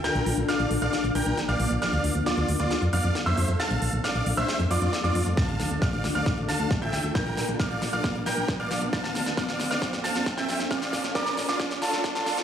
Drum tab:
HH |xxoxxxoxxxoxxxox|xxo-xxoxxxoxxxox|xxoxxxoxxxoxxxox|xxoxxxoxxxoxxxox|
SD |o---o---o---o---|o---o---o---o---|o---o---o---o---|o-o-o-o-o-o-o-o-|
BD |----------------|----------------|----------------|o---o---o---o---|

HH |xxoxxxoxxxoxxxox|xxoxxxoxxxoxxxox|xxoxxxo-xxoxxxox|
SD |o-o-o-o-o-o-o-o-|oooooooooooooooo|oooooooooooooooo|
BD |o---o---o---o---|o---o---o---o---|o-o-o---o---o---|